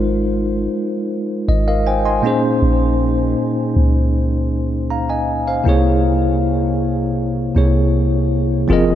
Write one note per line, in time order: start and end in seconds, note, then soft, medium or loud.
0.00 0.68 G#1 loud
0.00 2.19 G#3 medium
0.00 2.20 D#4 medium
0.00 2.20 F4 medium
0.00 1.45 A#4 medium
0.00 1.46 C5 medium
1.48 2.21 G#1 loud
1.48 1.66 D#5 medium
1.68 1.86 A#4 medium
1.68 1.85 D#5 medium
1.68 1.85 F5 medium
1.87 2.05 C5 medium
1.87 2.04 G5 medium
1.87 2.04 G#5 medium
2.05 2.42 D#5 medium
2.05 2.41 G#5 medium
2.05 2.58 C6 medium
2.22 5.23 A#2 medium
2.22 5.23 A#3 medium
2.22 5.24 C#4 medium
2.22 5.24 D#4 medium
2.22 5.25 G#4 medium
2.27 4.87 C5 medium
2.62 3.35 A#1 loud
3.76 5.62 C#2 loud
4.90 5.09 F5 medium
4.90 5.08 A#5 medium
5.10 5.46 D#5 medium
5.10 5.45 G#5 medium
5.47 5.84 C5 medium
5.47 5.83 F5 medium
5.64 7.52 C2 loud
5.64 7.51 C3 medium
5.64 7.52 A#3 medium
5.64 7.52 E4 medium
5.64 7.53 G#4 medium
5.69 7.54 C#5 medium
7.55 8.66 C2 loud
7.55 8.69 C3 medium
7.55 8.70 A#3 medium
7.55 8.70 E4 soft
7.55 8.70 G#4 soft
7.55 8.71 C#5 medium
8.68 8.95 F1 loud
8.68 8.95 F3 medium
8.68 8.95 C4 medium
8.68 8.95 F4 medium
8.68 8.95 G#4 medium
8.72 8.95 A#4 medium
8.72 8.95 D#5 medium